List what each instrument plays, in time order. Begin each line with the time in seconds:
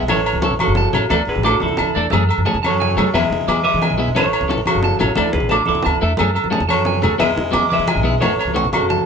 0.02 upright bass B1
0.08 upright bass A1, tenor saxophone E3, clean electric guitar F#3 C#4 E4 A4 C#5, muted conga, high conga, low conga, low agogo
0.26 clean electric guitar C#5, low conga, low agogo
0.33 upright bass C#2, high conga
0.42 clean electric guitar F#3 C#4 E4 A4 C#6, muted conga
0.51 upright bass A1, low conga
0.59 tenor saxophone C#3, clean electric guitar F#4 A4 C#6, high conga, low agogo
0.67 upright bass F#1
0.75 clean electric guitar A5, muted conga
0.85 high conga
0.93 upright bass A1, clean electric guitar F#3 C#4 E4 A4 C#5, low conga, low agogo
1.10 upright bass D2, tenor saxophone D3, clean electric guitar E3 A3 E4 A4 D5, muted clean electric guitar stroke, muted conga, high conga, low conga, low agogo
1.27 upright bass D2, tenor saxophone D3, clean electric guitar G#4 B4
1.35 upright bass A1, high conga
1.43 tenor saxophone C#3, clean electric guitar A3 D4 F#4 A4 D6, muted conga, low conga, low agogo
1.52 low conga
1.60 upright bass C#2, tenor saxophone D3, clean electric guitar E4 A4, muted clean electric guitar stroke, high conga
1.68 low conga
1.77 upright bass D2, clean electric guitar A5, muted conga, low agogo
1.85 high conga
1.95 upright bass E2, clean electric guitar E3 A3 D4 A4 D5
2.03 low conga
2.10 upright bass F#2, clean electric guitar F#3 A3 C#4 G#4 A4, muted conga, high conga, low conga, low agogo
2.29 clean electric guitar A4, low conga, low agogo
2.38 upright bass F#2, high conga
2.45 clean electric guitar F#3 A3 C#4 G#4 A5, muted conga
2.54 upright bass E2, low conga
2.63 clean electric guitar A4 C#5 A5, high conga, low agogo
2.68 upright bass F#2, tenor saxophone F#3
2.80 clean electric guitar G#5, muted conga
2.90 high conga
2.97 upright bass F#3, clean electric guitar F#3 A3 C#4 G#4 A4, low conga, low agogo
3.14 upright bass E2, clean electric guitar F#3 B3 E4 G#4 B4 E5, tenor saxophone G#3, muted conga, high conga, low conga, low agogo
3.30 upright bass E2, low conga
3.41 high conga
3.48 upright bass E3, clean electric guitar F#3 B3 E4 G#4 D6, muted conga, low conga, low agogo
3.56 low conga
3.64 tenor saxophone G#3, clean electric guitar B4 E5 D6, high conga
3.74 upright bass E3, low conga
3.82 clean electric guitar G#5, muted conga, low agogo
3.90 upright bass B1, high conga
3.98 clean electric guitar F#3 B3 E4 G#4 E5
4.08 upright bass E2, low conga
4.15 upright bass A1, tenor saxophone E3, clean electric guitar F#3 C#4 E4 A4 C#5, muted conga, high conga, low conga, low agogo
4.26 low conga
4.33 clean electric guitar C#5, low agogo
4.41 upright bass C#2, high conga
4.49 clean electric guitar F#3 C#4 E4 A4, muted clean electric guitar stroke, muted conga
4.58 upright bass A1, low conga
4.66 tenor saxophone C#3, clean electric guitar F#4 A4 C#6, high conga, low agogo
4.74 upright bass F#1, low conga
4.83 clean electric guitar A5, muted conga, low conga
4.91 high conga, low conga
4.99 upright bass A1, clean electric guitar F#3 C#4 E4 A4 C#5, low conga, low agogo
5.15 upright bass D2, tenor saxophone D3, clean electric guitar E3 A3 D4 E4 A4 D5, muted conga, high conga, low agogo
5.33 upright bass D2, tenor saxophone D3, clean electric guitar G#4 B4, low conga
5.40 upright bass A1, high conga
5.49 tenor saxophone C#3, clean electric guitar A3 D4 F#4 A4 D6, muted conga, low conga, low agogo
5.66 upright bass C#2, tenor saxophone D3, clean electric guitar E4 A4 D6, high conga
5.75 low conga
5.83 upright bass D2, clean electric guitar A5, muted conga, low agogo
5.91 high conga, low conga
6.00 upright bass E2, clean electric guitar E3 A3 D4 A4 E5, low conga
6.17 upright bass F#2, clean electric guitar F#3 A3 C#4 G#4 A4, muted conga, high conga, low conga, low agogo
6.35 clean electric guitar A4, low conga, low agogo
6.44 upright bass F#2, high conga
6.50 clean electric guitar F#3 A3 C#4 G#4 A5, muted conga
6.60 upright bass E2, low conga
6.68 tenor saxophone F#3, clean electric guitar A4 C#5 A5, high conga, low agogo
6.78 upright bass F#2
6.85 clean electric guitar G#5, muted conga
6.94 high conga
7.02 upright bass D#2, clean electric guitar A3 C#4 G#4 A4, muted clean electric guitar stroke, low conga, low agogo
7.18 upright bass E2, clean electric guitar F#3 B3 E4 G#4 B4 E5, tenor saxophone G#3, muted conga, high conga, low conga, low agogo
7.36 upright bass E2, low conga
7.51 upright bass E3, clean electric guitar F#3 B3 E4 G#4 D6, muted conga, low agogo
7.63 low conga
7.70 tenor saxophone G#3, clean electric guitar B4 E5 D6, high conga
7.79 upright bass E3, low conga
7.88 clean electric guitar G#5, muted conga, low agogo
7.95 upright bass B1, high conga
8.03 clean electric guitar F#3 B3 E4 G#4 E5
8.13 upright bass E2, low conga
8.20 upright bass A1, clean electric guitar E3 A3 C#4 F#4 A4 C#5, tenor saxophone E3, muted conga, high conga, low conga, low agogo
8.39 clean electric guitar C#5, low conga, low agogo
8.45 upright bass C#2, high conga
8.54 clean electric guitar E3 A3 C#4 F#4 C#6, muted conga
8.63 upright bass A1, low conga
8.71 tenor saxophone C#3, clean electric guitar F#4 A4 C#6, high conga, low agogo
8.81 upright bass F#1
8.90 clean electric guitar A5, muted conga
8.98 high conga